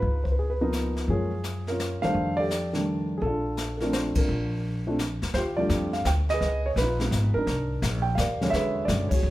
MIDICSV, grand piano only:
0, 0, Header, 1, 2, 480
1, 0, Start_track
1, 0, Tempo, 354191
1, 42, Time_signature, 3, 2, 24, 8
1, 12607, End_track
2, 0, Start_track
2, 0, Title_t, "Grand piano"
2, 0, Program_c, 0, 0
2, 0, Note_on_c, 0, 63, 53
2, 0, Note_on_c, 0, 65, 56
2, 0, Note_on_c, 0, 71, 87
2, 322, Note_on_c, 0, 72, 61
2, 329, Note_off_c, 0, 71, 0
2, 424, Note_off_c, 0, 72, 0
2, 431, Note_on_c, 0, 71, 63
2, 496, Note_off_c, 0, 65, 0
2, 500, Note_off_c, 0, 63, 0
2, 517, Note_off_c, 0, 71, 0
2, 527, Note_on_c, 0, 68, 62
2, 675, Note_on_c, 0, 71, 68
2, 681, Note_off_c, 0, 68, 0
2, 827, Note_on_c, 0, 53, 71
2, 828, Note_on_c, 0, 58, 63
2, 835, Note_on_c, 0, 59, 63
2, 836, Note_on_c, 0, 63, 84
2, 837, Note_off_c, 0, 71, 0
2, 1447, Note_off_c, 0, 53, 0
2, 1447, Note_off_c, 0, 58, 0
2, 1450, Note_off_c, 0, 59, 0
2, 1451, Note_off_c, 0, 63, 0
2, 1479, Note_on_c, 0, 53, 56
2, 1481, Note_on_c, 0, 56, 52
2, 1487, Note_on_c, 0, 58, 51
2, 1489, Note_on_c, 0, 61, 62
2, 1493, Note_on_c, 0, 68, 81
2, 1513, Note_on_c, 0, 65, 55
2, 1766, Note_off_c, 0, 53, 0
2, 1767, Note_off_c, 0, 56, 0
2, 1770, Note_off_c, 0, 58, 0
2, 1771, Note_off_c, 0, 61, 0
2, 2241, Note_off_c, 0, 65, 0
2, 2278, Note_on_c, 0, 70, 76
2, 2308, Note_on_c, 0, 61, 55
2, 2308, Note_on_c, 0, 65, 61
2, 2309, Note_off_c, 0, 68, 0
2, 2727, Note_off_c, 0, 70, 0
2, 2739, Note_on_c, 0, 51, 64
2, 2739, Note_on_c, 0, 77, 109
2, 2745, Note_on_c, 0, 55, 59
2, 2747, Note_on_c, 0, 57, 58
2, 2748, Note_on_c, 0, 62, 68
2, 2770, Note_on_c, 0, 69, 73
2, 2775, Note_on_c, 0, 72, 73
2, 2897, Note_off_c, 0, 61, 0
2, 2897, Note_off_c, 0, 65, 0
2, 3209, Note_on_c, 0, 74, 106
2, 3231, Note_off_c, 0, 69, 0
2, 3246, Note_off_c, 0, 77, 0
2, 3252, Note_on_c, 0, 69, 59
2, 3257, Note_on_c, 0, 67, 66
2, 3364, Note_off_c, 0, 51, 0
2, 3367, Note_off_c, 0, 55, 0
2, 3368, Note_off_c, 0, 57, 0
2, 3368, Note_off_c, 0, 62, 0
2, 3370, Note_off_c, 0, 72, 0
2, 3702, Note_on_c, 0, 51, 62
2, 3717, Note_on_c, 0, 57, 53
2, 3718, Note_on_c, 0, 55, 58
2, 3719, Note_on_c, 0, 62, 68
2, 4132, Note_off_c, 0, 74, 0
2, 4154, Note_off_c, 0, 69, 0
2, 4156, Note_off_c, 0, 67, 0
2, 4304, Note_on_c, 0, 68, 66
2, 4326, Note_off_c, 0, 51, 0
2, 4333, Note_off_c, 0, 55, 0
2, 4333, Note_off_c, 0, 57, 0
2, 4334, Note_off_c, 0, 62, 0
2, 4360, Note_on_c, 0, 69, 88
2, 4369, Note_off_c, 0, 68, 0
2, 4418, Note_on_c, 0, 62, 62
2, 4418, Note_on_c, 0, 65, 61
2, 5030, Note_off_c, 0, 69, 0
2, 5115, Note_on_c, 0, 69, 59
2, 5134, Note_off_c, 0, 62, 0
2, 5134, Note_off_c, 0, 65, 0
2, 5168, Note_on_c, 0, 70, 74
2, 5171, Note_on_c, 0, 53, 64
2, 5175, Note_on_c, 0, 57, 60
2, 5176, Note_on_c, 0, 60, 62
2, 5178, Note_off_c, 0, 69, 0
2, 5183, Note_on_c, 0, 62, 74
2, 5320, Note_off_c, 0, 70, 0
2, 5329, Note_on_c, 0, 72, 82
2, 5400, Note_off_c, 0, 72, 0
2, 5650, Note_on_c, 0, 70, 81
2, 5679, Note_off_c, 0, 62, 0
2, 5697, Note_on_c, 0, 65, 52
2, 5700, Note_on_c, 0, 62, 59
2, 5780, Note_off_c, 0, 53, 0
2, 5782, Note_off_c, 0, 57, 0
2, 5782, Note_off_c, 0, 60, 0
2, 6587, Note_off_c, 0, 62, 0
2, 6598, Note_on_c, 0, 53, 69
2, 6601, Note_on_c, 0, 57, 62
2, 6602, Note_on_c, 0, 60, 58
2, 6608, Note_on_c, 0, 62, 72
2, 6718, Note_off_c, 0, 70, 0
2, 6741, Note_off_c, 0, 65, 0
2, 6749, Note_off_c, 0, 53, 0
2, 6751, Note_off_c, 0, 57, 0
2, 6751, Note_off_c, 0, 60, 0
2, 6754, Note_off_c, 0, 62, 0
2, 7239, Note_on_c, 0, 72, 94
2, 7264, Note_on_c, 0, 65, 67
2, 7272, Note_on_c, 0, 67, 68
2, 7311, Note_off_c, 0, 72, 0
2, 7543, Note_on_c, 0, 74, 94
2, 7551, Note_on_c, 0, 53, 65
2, 7554, Note_off_c, 0, 65, 0
2, 7554, Note_on_c, 0, 55, 61
2, 7558, Note_off_c, 0, 67, 0
2, 7564, Note_on_c, 0, 57, 59
2, 7567, Note_on_c, 0, 62, 68
2, 7574, Note_on_c, 0, 65, 66
2, 7579, Note_on_c, 0, 67, 64
2, 7998, Note_off_c, 0, 74, 0
2, 8041, Note_on_c, 0, 77, 84
2, 8168, Note_off_c, 0, 53, 0
2, 8168, Note_off_c, 0, 65, 0
2, 8169, Note_off_c, 0, 55, 0
2, 8170, Note_off_c, 0, 67, 0
2, 8174, Note_off_c, 0, 57, 0
2, 8176, Note_off_c, 0, 62, 0
2, 8211, Note_off_c, 0, 77, 0
2, 8219, Note_on_c, 0, 79, 94
2, 8288, Note_off_c, 0, 79, 0
2, 8537, Note_on_c, 0, 75, 111
2, 8585, Note_on_c, 0, 71, 65
2, 8586, Note_on_c, 0, 68, 69
2, 9022, Note_off_c, 0, 75, 0
2, 9023, Note_on_c, 0, 73, 88
2, 9090, Note_off_c, 0, 73, 0
2, 9155, Note_off_c, 0, 68, 0
2, 9155, Note_off_c, 0, 71, 0
2, 9183, Note_on_c, 0, 71, 95
2, 9232, Note_on_c, 0, 63, 70
2, 9242, Note_on_c, 0, 65, 71
2, 9482, Note_off_c, 0, 63, 0
2, 9483, Note_on_c, 0, 53, 59
2, 9490, Note_on_c, 0, 56, 52
2, 9499, Note_on_c, 0, 59, 55
2, 9503, Note_on_c, 0, 63, 66
2, 9944, Note_off_c, 0, 65, 0
2, 9948, Note_on_c, 0, 70, 101
2, 9986, Note_off_c, 0, 63, 0
2, 9991, Note_off_c, 0, 71, 0
2, 10002, Note_on_c, 0, 62, 61
2, 10007, Note_on_c, 0, 63, 60
2, 10093, Note_off_c, 0, 53, 0
2, 10097, Note_off_c, 0, 56, 0
2, 10101, Note_off_c, 0, 59, 0
2, 10858, Note_off_c, 0, 70, 0
2, 10870, Note_on_c, 0, 79, 86
2, 10885, Note_off_c, 0, 62, 0
2, 10887, Note_off_c, 0, 63, 0
2, 11047, Note_on_c, 0, 77, 86
2, 11065, Note_off_c, 0, 79, 0
2, 11105, Note_on_c, 0, 74, 65
2, 11107, Note_on_c, 0, 70, 61
2, 11400, Note_on_c, 0, 50, 63
2, 11400, Note_on_c, 0, 54, 59
2, 11414, Note_on_c, 0, 56, 58
2, 11417, Note_on_c, 0, 61, 71
2, 11523, Note_on_c, 0, 76, 100
2, 11541, Note_off_c, 0, 74, 0
2, 11542, Note_off_c, 0, 70, 0
2, 11560, Note_off_c, 0, 77, 0
2, 11584, Note_on_c, 0, 71, 72
2, 11589, Note_on_c, 0, 68, 69
2, 11988, Note_off_c, 0, 76, 0
2, 11996, Note_on_c, 0, 74, 91
2, 12011, Note_off_c, 0, 50, 0
2, 12011, Note_off_c, 0, 54, 0
2, 12018, Note_off_c, 0, 56, 0
2, 12019, Note_off_c, 0, 61, 0
2, 12058, Note_on_c, 0, 50, 59
2, 12058, Note_on_c, 0, 56, 57
2, 12060, Note_on_c, 0, 54, 58
2, 12063, Note_on_c, 0, 61, 65
2, 12310, Note_off_c, 0, 74, 0
2, 12313, Note_off_c, 0, 71, 0
2, 12316, Note_off_c, 0, 68, 0
2, 12321, Note_on_c, 0, 73, 83
2, 12333, Note_off_c, 0, 50, 0
2, 12333, Note_off_c, 0, 56, 0
2, 12334, Note_off_c, 0, 54, 0
2, 12335, Note_off_c, 0, 61, 0
2, 12383, Note_on_c, 0, 68, 57
2, 12389, Note_on_c, 0, 66, 61
2, 12607, Note_off_c, 0, 66, 0
2, 12607, Note_off_c, 0, 68, 0
2, 12607, Note_off_c, 0, 73, 0
2, 12607, End_track
0, 0, End_of_file